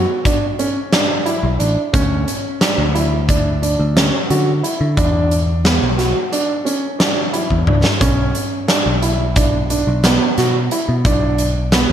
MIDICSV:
0, 0, Header, 1, 4, 480
1, 0, Start_track
1, 0, Key_signature, 2, "minor"
1, 0, Tempo, 674157
1, 1381, Time_signature, 9, 3, 24, 8
1, 8491, End_track
2, 0, Start_track
2, 0, Title_t, "Grand piano"
2, 0, Program_c, 0, 0
2, 180, Note_on_c, 0, 62, 74
2, 310, Note_off_c, 0, 62, 0
2, 421, Note_on_c, 0, 61, 69
2, 551, Note_off_c, 0, 61, 0
2, 658, Note_on_c, 0, 62, 74
2, 789, Note_off_c, 0, 62, 0
2, 894, Note_on_c, 0, 64, 69
2, 1026, Note_off_c, 0, 64, 0
2, 1133, Note_on_c, 0, 62, 67
2, 1265, Note_off_c, 0, 62, 0
2, 1377, Note_on_c, 0, 61, 83
2, 1638, Note_off_c, 0, 61, 0
2, 1857, Note_on_c, 0, 62, 73
2, 1988, Note_off_c, 0, 62, 0
2, 2099, Note_on_c, 0, 64, 68
2, 2230, Note_off_c, 0, 64, 0
2, 2343, Note_on_c, 0, 62, 75
2, 2472, Note_off_c, 0, 62, 0
2, 2579, Note_on_c, 0, 62, 69
2, 2710, Note_off_c, 0, 62, 0
2, 2822, Note_on_c, 0, 61, 73
2, 2952, Note_off_c, 0, 61, 0
2, 3064, Note_on_c, 0, 66, 71
2, 3194, Note_off_c, 0, 66, 0
2, 3300, Note_on_c, 0, 64, 61
2, 3430, Note_off_c, 0, 64, 0
2, 3539, Note_on_c, 0, 62, 84
2, 3800, Note_off_c, 0, 62, 0
2, 4019, Note_on_c, 0, 59, 69
2, 4150, Note_off_c, 0, 59, 0
2, 4259, Note_on_c, 0, 66, 64
2, 4389, Note_off_c, 0, 66, 0
2, 4501, Note_on_c, 0, 62, 75
2, 4632, Note_off_c, 0, 62, 0
2, 4736, Note_on_c, 0, 61, 66
2, 4868, Note_off_c, 0, 61, 0
2, 4977, Note_on_c, 0, 62, 69
2, 5108, Note_off_c, 0, 62, 0
2, 5220, Note_on_c, 0, 64, 62
2, 5351, Note_off_c, 0, 64, 0
2, 5463, Note_on_c, 0, 62, 64
2, 5593, Note_off_c, 0, 62, 0
2, 5700, Note_on_c, 0, 61, 81
2, 5961, Note_off_c, 0, 61, 0
2, 6179, Note_on_c, 0, 62, 72
2, 6310, Note_off_c, 0, 62, 0
2, 6426, Note_on_c, 0, 64, 68
2, 6555, Note_off_c, 0, 64, 0
2, 6665, Note_on_c, 0, 62, 70
2, 6794, Note_off_c, 0, 62, 0
2, 6908, Note_on_c, 0, 62, 70
2, 7036, Note_off_c, 0, 62, 0
2, 7149, Note_on_c, 0, 59, 73
2, 7277, Note_off_c, 0, 59, 0
2, 7392, Note_on_c, 0, 66, 66
2, 7519, Note_off_c, 0, 66, 0
2, 7631, Note_on_c, 0, 64, 66
2, 7759, Note_off_c, 0, 64, 0
2, 7875, Note_on_c, 0, 62, 80
2, 8131, Note_off_c, 0, 62, 0
2, 8349, Note_on_c, 0, 59, 73
2, 8477, Note_off_c, 0, 59, 0
2, 8491, End_track
3, 0, Start_track
3, 0, Title_t, "Picked electric bass"
3, 0, Program_c, 1, 34
3, 1021, Note_on_c, 1, 35, 78
3, 1130, Note_off_c, 1, 35, 0
3, 1140, Note_on_c, 1, 33, 77
3, 1250, Note_off_c, 1, 33, 0
3, 1380, Note_on_c, 1, 38, 79
3, 1598, Note_off_c, 1, 38, 0
3, 1981, Note_on_c, 1, 38, 79
3, 2673, Note_off_c, 1, 38, 0
3, 2702, Note_on_c, 1, 38, 78
3, 2919, Note_off_c, 1, 38, 0
3, 3064, Note_on_c, 1, 50, 84
3, 3281, Note_off_c, 1, 50, 0
3, 3422, Note_on_c, 1, 50, 77
3, 3531, Note_off_c, 1, 50, 0
3, 3544, Note_on_c, 1, 40, 92
3, 4115, Note_off_c, 1, 40, 0
3, 4145, Note_on_c, 1, 35, 74
3, 4361, Note_off_c, 1, 35, 0
3, 5344, Note_on_c, 1, 40, 76
3, 5452, Note_off_c, 1, 40, 0
3, 5466, Note_on_c, 1, 37, 76
3, 5573, Note_off_c, 1, 37, 0
3, 5704, Note_on_c, 1, 35, 83
3, 5921, Note_off_c, 1, 35, 0
3, 6308, Note_on_c, 1, 35, 70
3, 6997, Note_off_c, 1, 35, 0
3, 7029, Note_on_c, 1, 35, 76
3, 7244, Note_off_c, 1, 35, 0
3, 7390, Note_on_c, 1, 47, 79
3, 7604, Note_off_c, 1, 47, 0
3, 7751, Note_on_c, 1, 47, 72
3, 7856, Note_off_c, 1, 47, 0
3, 7866, Note_on_c, 1, 35, 92
3, 8436, Note_off_c, 1, 35, 0
3, 8491, End_track
4, 0, Start_track
4, 0, Title_t, "Drums"
4, 180, Note_on_c, 9, 36, 84
4, 180, Note_on_c, 9, 42, 69
4, 251, Note_off_c, 9, 36, 0
4, 251, Note_off_c, 9, 42, 0
4, 422, Note_on_c, 9, 42, 53
4, 493, Note_off_c, 9, 42, 0
4, 659, Note_on_c, 9, 38, 89
4, 659, Note_on_c, 9, 42, 63
4, 730, Note_off_c, 9, 38, 0
4, 730, Note_off_c, 9, 42, 0
4, 898, Note_on_c, 9, 42, 49
4, 969, Note_off_c, 9, 42, 0
4, 1139, Note_on_c, 9, 42, 52
4, 1210, Note_off_c, 9, 42, 0
4, 1380, Note_on_c, 9, 36, 105
4, 1382, Note_on_c, 9, 42, 77
4, 1451, Note_off_c, 9, 36, 0
4, 1453, Note_off_c, 9, 42, 0
4, 1622, Note_on_c, 9, 42, 55
4, 1693, Note_off_c, 9, 42, 0
4, 1859, Note_on_c, 9, 38, 103
4, 1859, Note_on_c, 9, 42, 75
4, 1931, Note_off_c, 9, 38, 0
4, 1931, Note_off_c, 9, 42, 0
4, 2104, Note_on_c, 9, 42, 55
4, 2175, Note_off_c, 9, 42, 0
4, 2341, Note_on_c, 9, 36, 89
4, 2341, Note_on_c, 9, 42, 73
4, 2412, Note_off_c, 9, 36, 0
4, 2412, Note_off_c, 9, 42, 0
4, 2585, Note_on_c, 9, 42, 59
4, 2656, Note_off_c, 9, 42, 0
4, 2825, Note_on_c, 9, 38, 88
4, 2825, Note_on_c, 9, 42, 69
4, 2896, Note_off_c, 9, 38, 0
4, 2896, Note_off_c, 9, 42, 0
4, 3065, Note_on_c, 9, 42, 52
4, 3136, Note_off_c, 9, 42, 0
4, 3306, Note_on_c, 9, 42, 57
4, 3377, Note_off_c, 9, 42, 0
4, 3541, Note_on_c, 9, 36, 107
4, 3541, Note_on_c, 9, 42, 74
4, 3612, Note_off_c, 9, 36, 0
4, 3612, Note_off_c, 9, 42, 0
4, 3784, Note_on_c, 9, 42, 51
4, 3855, Note_off_c, 9, 42, 0
4, 4023, Note_on_c, 9, 38, 97
4, 4023, Note_on_c, 9, 42, 68
4, 4094, Note_off_c, 9, 38, 0
4, 4094, Note_off_c, 9, 42, 0
4, 4264, Note_on_c, 9, 38, 29
4, 4264, Note_on_c, 9, 42, 50
4, 4335, Note_off_c, 9, 38, 0
4, 4335, Note_off_c, 9, 42, 0
4, 4505, Note_on_c, 9, 42, 63
4, 4576, Note_off_c, 9, 42, 0
4, 4746, Note_on_c, 9, 42, 50
4, 4817, Note_off_c, 9, 42, 0
4, 4984, Note_on_c, 9, 38, 90
4, 4984, Note_on_c, 9, 42, 64
4, 5055, Note_off_c, 9, 38, 0
4, 5055, Note_off_c, 9, 42, 0
4, 5224, Note_on_c, 9, 42, 52
4, 5295, Note_off_c, 9, 42, 0
4, 5343, Note_on_c, 9, 36, 49
4, 5414, Note_off_c, 9, 36, 0
4, 5462, Note_on_c, 9, 45, 59
4, 5534, Note_off_c, 9, 45, 0
4, 5581, Note_on_c, 9, 38, 84
4, 5652, Note_off_c, 9, 38, 0
4, 5703, Note_on_c, 9, 36, 110
4, 5703, Note_on_c, 9, 42, 81
4, 5774, Note_off_c, 9, 42, 0
4, 5775, Note_off_c, 9, 36, 0
4, 5944, Note_on_c, 9, 42, 53
4, 6015, Note_off_c, 9, 42, 0
4, 6183, Note_on_c, 9, 38, 89
4, 6183, Note_on_c, 9, 42, 72
4, 6254, Note_off_c, 9, 38, 0
4, 6254, Note_off_c, 9, 42, 0
4, 6426, Note_on_c, 9, 42, 53
4, 6497, Note_off_c, 9, 42, 0
4, 6664, Note_on_c, 9, 42, 67
4, 6666, Note_on_c, 9, 36, 89
4, 6735, Note_off_c, 9, 42, 0
4, 6737, Note_off_c, 9, 36, 0
4, 6907, Note_on_c, 9, 42, 59
4, 6979, Note_off_c, 9, 42, 0
4, 7146, Note_on_c, 9, 38, 88
4, 7146, Note_on_c, 9, 42, 69
4, 7217, Note_off_c, 9, 38, 0
4, 7217, Note_off_c, 9, 42, 0
4, 7388, Note_on_c, 9, 38, 28
4, 7388, Note_on_c, 9, 42, 55
4, 7459, Note_off_c, 9, 38, 0
4, 7459, Note_off_c, 9, 42, 0
4, 7627, Note_on_c, 9, 42, 57
4, 7698, Note_off_c, 9, 42, 0
4, 7867, Note_on_c, 9, 36, 107
4, 7867, Note_on_c, 9, 42, 76
4, 7938, Note_off_c, 9, 36, 0
4, 7938, Note_off_c, 9, 42, 0
4, 8106, Note_on_c, 9, 42, 54
4, 8177, Note_off_c, 9, 42, 0
4, 8346, Note_on_c, 9, 38, 94
4, 8346, Note_on_c, 9, 42, 68
4, 8417, Note_off_c, 9, 38, 0
4, 8417, Note_off_c, 9, 42, 0
4, 8491, End_track
0, 0, End_of_file